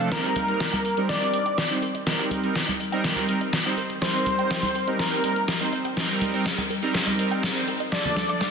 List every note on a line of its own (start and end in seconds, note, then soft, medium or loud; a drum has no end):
0.00 swell medium
0.12 0.45 G3 medium
0.12 0.45 C4 medium
0.12 0.45 D#4 medium
0.12 1.00 A#4 loud
0.12 0.46 A#4 loud
0.12 1.00 A#4 loud
0.12 kick loud
0.12 snare soft
0.12 closed hi-hat medium
0.36 0.46 A#4 medium
0.36 open hi-hat loud
0.36 high conga medium
0.48 0.61 G3 medium
0.48 0.61 C4 medium
0.48 0.61 D#4 medium
0.48 0.61 A#4 loud
0.48 0.58 D#5 medium
0.48 closed hi-hat medium
0.60 kick loud
0.60 snare soft
0.60 closed hi-hat medium
0.73 0.79 G5 loud
0.73 high conga medium
0.85 0.91 A#4 medium
0.85 open hi-hat medium
0.97 1.31 G3 medium
0.97 1.31 C4 medium
0.97 1.31 D#4 medium
0.97 1.31 A#4 loud
0.97 closed hi-hat medium
1.09 1.19 A#4 medium
1.09 1.73 D5 loud
1.09 1.73 D5 medium
1.09 kick loud
1.09 snare soft
1.09 closed hi-hat medium
1.22 closed hi-hat soft
1.33 1.42 G3 medium
1.33 1.42 C4 medium
1.33 1.42 D#4 medium
1.33 1.42 A#4 medium
1.33 open hi-hat loud
1.46 1.52 G5 loud
1.46 closed hi-hat medium
1.58 1.65 A#4 medium
1.58 kick loud
1.58 snare medium
1.58 closed hi-hat medium
1.70 1.78 G3 medium
1.70 1.78 C4 medium
1.70 1.78 D#4 medium
1.70 1.78 C5 loud
1.70 closed hi-hat soft
1.82 1.92 A#4 medium
1.82 open hi-hat medium
1.95 2.04 D#5 medium
1.95 closed hi-hat medium
2.07 2.41 G3 medium
2.07 2.41 C4 medium
2.07 2.41 D#4 medium
2.07 2.41 A#4 loud
2.07 2.13 D#5 medium
2.07 kick loud
2.07 snare medium
2.07 closed hi-hat medium
2.19 2.26 G5 loud
2.31 2.38 A#4 medium
2.31 open hi-hat loud
2.31 high conga medium
2.43 2.57 G3 medium
2.43 2.57 C4 medium
2.43 2.57 D#4 medium
2.43 2.57 A#4 loud
2.43 closed hi-hat medium
2.55 2.65 A#4 medium
2.55 kick loud
2.55 snare medium
2.55 closed hi-hat medium
2.68 2.78 D#5 medium
2.68 high conga medium
2.80 2.87 D#5 medium
2.80 open hi-hat loud
2.92 3.26 G3 medium
2.92 3.26 C4 medium
2.92 3.26 D#4 medium
2.92 3.26 A#4 loud
2.92 2.99 G5 loud
2.92 closed hi-hat medium
3.04 3.11 A#4 medium
3.04 kick loud
3.04 snare medium
3.04 closed hi-hat medium
3.16 closed hi-hat soft
3.16 high conga medium
3.29 3.37 G3 medium
3.29 3.37 C4 medium
3.29 3.37 D#4 medium
3.29 3.39 A#4 medium
3.29 3.37 A#4 medium
3.29 open hi-hat loud
3.41 3.51 D#5 medium
3.41 closed hi-hat medium
3.53 kick loud
3.53 snare medium
3.53 closed hi-hat medium
3.65 3.74 G3 medium
3.65 3.74 C4 medium
3.65 3.74 D#4 medium
3.65 3.74 C5 loud
3.65 3.72 G5 medium
3.65 closed hi-hat soft
3.77 3.84 A#4 medium
3.77 open hi-hat loud
3.90 closed hi-hat medium
4.02 4.36 G3 medium
4.02 4.36 C4 medium
4.02 4.36 D#4 medium
4.02 4.12 A#4 medium
4.02 4.36 A#4 loud
4.02 4.90 C5 loud
4.02 kick loud
4.02 snare medium
4.02 closed hi-hat medium
4.14 4.24 D#5 medium
4.26 4.33 D#5 medium
4.26 open hi-hat loud
4.26 high conga medium
4.39 4.52 G3 loud
4.39 4.52 C4 medium
4.39 4.52 D#4 medium
4.39 4.52 A#4 loud
4.39 4.45 G5 loud
4.39 closed hi-hat soft
4.51 4.57 A#4 medium
4.51 kick loud
4.51 snare medium
4.51 closed hi-hat medium
4.63 high conga medium
4.75 4.85 A#4 medium
4.75 open hi-hat loud
4.87 5.21 G3 medium
4.87 5.21 C4 medium
4.87 5.21 D#4 medium
4.87 5.21 A#4 loud
4.87 4.97 D#5 medium
4.87 closed hi-hat medium
4.99 5.63 A#4 loud
4.99 5.63 A#4 medium
4.99 5.06 D#5 medium
4.99 kick loud
4.99 snare medium
4.99 closed hi-hat medium
5.12 5.18 G5 loud
5.12 closed hi-hat soft
5.24 5.32 G3 medium
5.24 5.32 C4 medium
5.24 5.32 D#4 medium
5.24 5.30 A#4 medium
5.24 5.32 A#4 medium
5.24 open hi-hat loud
5.36 closed hi-hat medium
5.48 5.58 A#4 medium
5.48 kick loud
5.48 snare medium
5.48 closed hi-hat medium
5.60 5.69 G3 medium
5.60 5.69 C4 medium
5.60 5.69 D#4 medium
5.60 5.69 C5 loud
5.60 5.70 D#5 medium
5.60 closed hi-hat soft
5.73 5.79 D#5 medium
5.73 open hi-hat loud
5.85 5.91 G5 loud
5.85 closed hi-hat medium
5.97 6.31 G3 medium
5.97 6.31 C4 medium
5.97 6.31 D#4 medium
5.97 6.04 A#4 medium
5.97 6.31 A#4 loud
5.97 kick loud
5.97 snare medium
5.97 closed hi-hat medium
6.21 6.31 A#4 medium
6.21 open hi-hat loud
6.21 high conga medium
6.34 6.47 G3 medium
6.34 6.47 C4 medium
6.34 6.47 D#4 medium
6.34 6.47 A#4 loud
6.34 6.43 D#5 medium
6.34 closed hi-hat soft
6.46 6.52 D#5 medium
6.46 kick loud
6.46 snare medium
6.46 closed hi-hat medium
6.58 6.65 G5 loud
6.58 high conga medium
6.70 6.77 A#4 medium
6.70 open hi-hat loud
6.82 7.16 G3 medium
6.82 7.16 C4 medium
6.82 7.16 D#4 medium
6.82 7.16 A#4 loud
6.82 closed hi-hat medium
6.94 7.04 A#4 medium
6.94 kick loud
6.94 snare medium
6.94 closed hi-hat medium
7.07 7.17 D#5 medium
7.07 closed hi-hat soft
7.07 high conga medium
7.19 7.53 G3 medium
7.19 7.53 C4 medium
7.19 7.53 D#4 medium
7.19 7.53 A#4 loud
7.19 7.26 D#5 medium
7.19 open hi-hat loud
7.31 7.38 G5 loud
7.31 closed hi-hat medium
7.43 7.50 A#4 medium
7.43 kick loud
7.43 snare medium
7.43 closed hi-hat medium
7.55 7.64 G3 medium
7.55 7.64 C4 medium
7.55 7.64 D#4 medium
7.55 7.64 C5 medium
7.55 closed hi-hat soft
7.68 7.78 A#4 medium
7.68 open hi-hat medium
7.80 7.90 D#5 medium
7.80 closed hi-hat soft
7.92 8.26 F3 medium
7.92 8.26 A3 medium
7.92 8.26 D4 medium
7.92 8.26 A4 loud
7.92 7.99 A4 medium
7.92 8.51 D5 loud
7.92 kick loud
7.92 snare medium
7.92 closed hi-hat medium
7.92 riser medium
7.92 cabasa medium
7.92 high woodblock soft
8.04 8.14 D6 medium
8.04 low conga medium
8.04 cabasa soft
8.16 8.26 A4 medium
8.16 snare medium
8.16 open hi-hat loud
8.16 high conga medium
8.29 8.42 F3 medium
8.29 8.42 A3 medium
8.29 8.42 D4 medium
8.29 8.42 A4 loud
8.29 8.39 F5 medium
8.29 closed hi-hat soft
8.29 cabasa medium
8.29 high woodblock medium
8.41 8.48 F5 medium
8.41 kick loud
8.41 snare medium
8.41 closed hi-hat medium
8.41 cabasa medium